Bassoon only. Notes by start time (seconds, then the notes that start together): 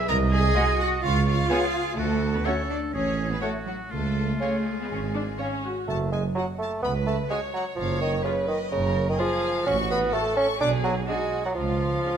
0.55 G#3
1.50 B3
2.45 A3
3.42 A3
4.40 C#4
5.40 C#4
5.88 A3
6.12 G#3
6.35 F#3
6.59 A3
6.83 B3
7.07 A3
7.30 G#3
7.54 F#3
7.76 F3
8.01 D#3
8.24 C#3
8.48 D#3
8.72 C#3
9.09 D#3
9.20 F3
9.67 C#4
9.91 B3
10.14 A3
10.37 C#4
10.61 D4
10.84 F#3
11.08 G#3
11.46 F#3
11.55 F3